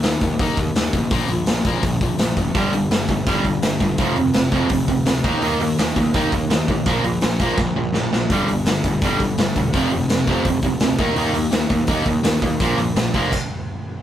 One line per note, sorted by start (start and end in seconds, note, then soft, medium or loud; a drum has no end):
0.02 0.15 D#2 medium
0.02 0.21 D#3 medium
0.02 0.21 A#3 medium
0.02 snare loud
0.02 open hi-hat medium
0.21 0.34 D#2 medium
0.21 0.38 D#3 medium
0.21 0.39 A#3 medium
0.21 kick medium
0.21 open hi-hat medium
0.39 0.52 D#2 medium
0.39 0.56 D#3 medium
0.39 0.57 A#3 medium
0.39 0.57 D#4 loud
0.39 kick loud
0.39 open hi-hat medium
0.57 0.69 D#2 medium
0.57 0.74 D#3 medium
0.57 0.74 A#3 medium
0.57 kick medium
0.57 open hi-hat medium
0.75 0.88 D#2 medium
0.75 0.92 D#3 medium
0.75 0.92 A#3 medium
0.75 snare loud
0.75 open hi-hat medium
0.93 1.05 A1 medium
0.93 1.10 D#3 medium
0.93 1.10 A#3 medium
0.93 kick medium
0.93 open hi-hat medium
1.11 1.23 A#1 loud
1.11 1.28 A#2 medium
1.11 1.29 F3 loud
1.11 1.29 A#3 medium
1.11 kick loud
1.11 open hi-hat medium
1.28 1.41 A#1 medium
1.28 1.46 A#2 medium
1.28 1.46 F3 medium
1.28 open hi-hat medium
1.46 1.59 A#1 medium
1.46 1.64 A#2 medium
1.46 1.64 F3 medium
1.46 snare loud
1.46 open hi-hat medium
1.65 1.77 A#1 medium
1.65 1.82 A#2 loud
1.65 1.83 F3 loud
1.65 1.83 A#3 medium
1.65 kick medium
1.65 open hi-hat medium
1.83 1.95 A#1 loud
1.83 2.00 A#2 medium
1.83 2.00 F3 medium
1.83 kick loud
1.83 open hi-hat medium
2.01 2.13 A#1 medium
2.01 2.18 A#2 medium
2.01 2.18 F3 medium
2.01 kick medium
2.01 open hi-hat medium
2.19 2.31 A#1 medium
2.19 2.35 A#2 medium
2.19 2.36 F3 medium
2.19 snare loud
2.19 open hi-hat medium
2.37 2.49 F#1 medium
2.37 2.54 A#2 medium
2.37 2.54 F3 medium
2.37 kick medium
2.37 open hi-hat medium
2.55 2.67 G1 medium
2.55 2.72 G2 medium
2.55 2.73 D3 medium
2.55 2.73 G3 loud
2.55 kick loud
2.55 open hi-hat medium
2.72 2.84 G1 medium
2.72 2.90 G2 medium
2.72 2.90 D3 medium
2.72 open hi-hat medium
2.91 3.03 G1 loud
2.91 3.07 G2 medium
2.91 3.08 D3 medium
2.91 snare loud
2.91 open hi-hat medium
3.08 3.20 G1 medium
3.08 3.25 G2 medium
3.08 3.25 D3 medium
3.08 kick medium
3.08 open hi-hat medium
3.26 3.39 G1 loud
3.26 3.44 G2 medium
3.26 3.44 D3 medium
3.26 3.44 G3 loud
3.26 kick loud
3.26 open hi-hat medium
3.44 3.56 G1 loud
3.44 3.61 G2 medium
3.44 3.61 D3 medium
3.44 kick medium
3.44 open hi-hat medium
3.62 3.74 G1 medium
3.62 3.79 G2 medium
3.62 3.79 D3 medium
3.62 snare loud
3.62 open hi-hat medium
3.80 3.92 G1 medium
3.80 3.97 G2 medium
3.80 3.97 D3 medium
3.80 kick medium
3.80 open hi-hat medium
3.98 4.11 F1 medium
3.98 4.16 F2 medium
3.98 4.16 C3 medium
3.98 4.16 F3 medium
3.98 kick loud
3.98 open hi-hat medium
4.16 4.29 F1 medium
4.16 4.32 F2 medium
4.16 4.33 C3 medium
4.16 open hi-hat medium
4.33 4.47 F1 medium
4.33 4.50 F2 medium
4.33 4.50 C3 medium
4.33 snare loud
4.33 open hi-hat medium
4.51 4.64 F1 medium
4.51 4.67 F2 medium
4.51 4.68 C3 loud
4.51 4.69 F3 loud
4.51 kick medium
4.51 open hi-hat medium
4.69 4.82 F1 loud
4.69 4.86 F2 medium
4.69 4.86 C3 medium
4.69 kick loud
4.69 open hi-hat medium
4.88 5.00 F1 medium
4.88 5.04 F2 medium
4.88 5.04 C3 medium
4.88 kick medium
4.88 open hi-hat medium
5.05 5.18 D2 medium
5.05 5.22 F2 medium
5.05 5.22 C3 medium
5.05 snare loud
5.05 open hi-hat medium
5.24 5.36 D#2 medium
5.24 5.41 D#3 medium
5.24 5.41 A#3 medium
5.24 5.42 D#4 loud
5.24 kick loud
5.24 open hi-hat medium
5.42 5.54 D#2 medium
5.42 5.59 D#3 medium
5.42 5.60 A#3 medium
5.42 5.60 D#4 loud
5.42 open hi-hat medium
5.60 5.72 D#2 medium
5.60 5.77 D#3 medium
5.60 5.77 A#3 medium
5.60 open hi-hat medium
5.78 5.91 D#2 medium
5.78 5.95 D#3 medium
5.78 5.96 A#3 medium
5.78 snare loud
5.78 open hi-hat medium
5.96 6.08 D#2 medium
5.96 6.13 D#3 medium
5.96 6.13 A#3 medium
5.96 kick medium
5.96 open hi-hat medium
6.14 6.26 D#2 medium
6.14 6.32 D#3 medium
6.14 6.32 A#3 medium
6.14 6.32 D#4 loud
6.14 kick loud
6.14 open hi-hat medium
6.32 6.44 D#2 medium
6.32 6.49 D#3 medium
6.32 6.49 A#3 medium
6.32 kick medium
6.32 open hi-hat medium
6.50 6.62 D#2 medium
6.50 6.67 D#3 medium
6.50 6.67 A#3 medium
6.50 snare loud
6.50 open hi-hat medium
6.68 6.80 A1 medium
6.68 6.85 D#3 medium
6.68 6.85 A#3 medium
6.68 kick medium
6.68 open hi-hat medium
6.86 6.98 A#1 loud
6.86 7.03 A#2 medium
6.86 7.03 F3 loud
6.86 7.04 A#3 loud
6.86 kick loud
6.86 open hi-hat medium
7.04 7.16 A#1 medium
7.04 7.20 A#2 medium
7.04 7.21 F3 medium
7.04 open hi-hat medium
7.21 7.34 A#1 medium
7.21 7.38 A#2 medium
7.21 7.39 F3 medium
7.21 snare loud
7.21 open hi-hat medium
7.39 7.52 A#1 medium
7.39 7.57 A#2 medium
7.39 7.57 F3 loud
7.39 7.57 A#3 medium
7.39 kick medium
7.39 open hi-hat medium
7.58 7.70 A#1 medium
7.58 7.74 A#2 medium
7.58 7.74 F3 medium
7.58 kick loud
7.58 snare medium
7.76 7.88 A#1 medium
7.76 7.92 A#2 medium
7.76 7.93 F3 medium
7.92 8.05 A#1 medium
7.92 8.10 A#2 medium
7.92 8.11 F3 medium
7.92 snare medium
8.12 8.24 A#1 medium
8.12 8.29 A#2 medium
8.12 8.29 F3 medium
8.12 snare medium
8.30 8.42 G1 loud
8.30 8.47 G2 medium
8.30 8.48 D3 medium
8.30 8.48 G3 loud
8.30 kick loud
8.30 open hi-hat medium
8.48 8.60 G1 medium
8.48 8.65 G2 medium
8.48 8.65 D3 medium
8.48 open hi-hat medium
8.65 8.77 G1 medium
8.65 8.83 G2 medium
8.65 8.83 D3 medium
8.65 snare loud
8.65 open hi-hat medium
8.84 8.96 G1 medium
8.84 9.00 G2 medium
8.84 9.01 D3 medium
8.84 kick medium
8.84 open hi-hat medium
9.02 9.14 G1 loud
9.02 9.20 G2 loud
9.02 9.20 D3 medium
9.02 9.20 G3 medium
9.02 kick loud
9.02 open hi-hat medium
9.20 9.32 G1 medium
9.20 9.37 G2 medium
9.20 9.37 D3 medium
9.20 kick medium
9.20 open hi-hat medium
9.38 9.50 G1 medium
9.38 9.54 G2 medium
9.38 9.54 D3 medium
9.38 snare loud
9.38 open hi-hat medium
9.56 9.68 E1 medium
9.56 9.72 G2 medium
9.56 9.72 D3 medium
9.56 kick medium
9.56 open hi-hat medium
9.73 9.85 F1 loud
9.73 9.90 F2 loud
9.73 9.90 C3 medium
9.73 9.91 F3 loud
9.73 kick loud
9.73 open hi-hat medium
9.91 10.05 F1 medium
9.91 10.08 F2 medium
9.91 10.08 C3 medium
9.91 open hi-hat medium
10.09 10.22 F1 medium
10.09 10.25 F2 medium
10.09 10.26 C3 medium
10.09 snare loud
10.09 open hi-hat medium
10.27 10.39 F1 medium
10.27 10.44 F2 medium
10.27 10.45 C3 medium
10.27 10.45 F3 loud
10.27 kick medium
10.27 open hi-hat medium
10.45 10.57 F1 medium
10.45 10.61 F2 medium
10.45 10.62 C3 medium
10.45 kick loud
10.45 open hi-hat medium
10.62 10.75 F1 loud
10.62 10.80 F2 medium
10.62 10.80 C3 medium
10.62 kick medium
10.62 open hi-hat medium
10.80 10.93 D2 medium
10.80 10.98 F2 medium
10.80 10.98 C3 medium
10.80 snare loud
10.80 open hi-hat medium
10.98 11.10 D#2 medium
10.98 11.16 D#3 loud
10.98 11.16 A#3 medium
10.98 11.16 D#4 loud
10.98 kick loud
10.98 open hi-hat medium
11.16 11.28 D#2 loud
11.16 11.34 D#3 medium
11.16 11.34 A#3 loud
11.16 11.34 D#4 loud
11.16 open hi-hat medium
11.33 11.46 D#2 medium
11.33 11.50 D#3 medium
11.33 11.51 A#3 medium
11.33 open hi-hat medium
11.51 11.64 D#2 medium
11.51 11.68 D#3 medium
11.51 11.68 A#3 medium
11.51 snare loud
11.51 open hi-hat medium
11.69 11.82 D#2 medium
11.69 11.86 D#3 medium
11.69 11.86 A#3 medium
11.69 kick medium
11.69 open hi-hat medium
11.87 12.00 D#2 medium
11.87 12.05 D#3 loud
11.87 12.05 A#3 medium
11.87 12.06 D#4 medium
11.87 kick loud
11.87 open hi-hat medium
12.05 12.18 D#2 medium
12.05 12.22 D#3 medium
12.05 12.22 A#3 medium
12.05 kick medium
12.05 open hi-hat medium
12.23 12.36 D#2 medium
12.23 12.40 D#3 medium
12.23 12.40 A#3 medium
12.23 snare loud
12.23 open hi-hat medium
12.42 12.54 D#2 medium
12.42 12.59 D#3 medium
12.42 12.59 A#3 medium
12.42 kick medium
12.42 open hi-hat medium
12.60 12.72 A#1 loud
12.60 12.77 A#2 medium
12.60 12.78 F3 medium
12.60 12.78 A#3 loud
12.60 kick loud
12.60 open hi-hat medium
12.77 12.89 A#1 medium
12.77 12.95 A#2 medium
12.77 12.95 F3 medium
12.77 open hi-hat medium
12.95 13.07 A#1 medium
12.95 13.12 A#2 medium
12.95 13.13 F3 medium
12.95 snare loud
12.95 open hi-hat medium
13.14 13.26 F1 medium
13.14 13.31 A#2 medium
13.14 13.31 F3 loud
13.14 13.32 A#3 medium
13.14 kick medium
13.14 open hi-hat medium
13.32 kick loud
13.32 crash loud